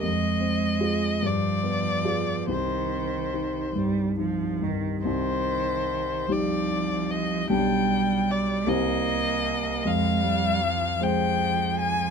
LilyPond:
<<
  \new Staff \with { instrumentName = "Violin" } { \time 6/8 \key c \minor \tempo 4. = 50 ees''4. d''4. | c''4. r4. | c''4. d''4 ees''8 | g''4 d''8 ees''4. |
f''4. g''4 aes''8 | }
  \new Staff \with { instrumentName = "Grand piano" } { \time 6/8 \key c \minor f,8 c'8 <f' aes'>8 g,8 b8 <f' aes'>8 | c,8 c'8 ees'8 g,8 ees'8 g,8 | c,4. <g ees' g'>4. | <b,, g d' g'>4. <c, g c' c''>4. |
f,4. <aes c' c''>4. | }
  \new Staff \with { instrumentName = "Cello" } { \clef bass \time 6/8 \key c \minor aes4. f4. | ees4. g8 f8 ees8 | ees4. f4. | g4. bes4. |
aes8 g8 f8 f4. | }
>>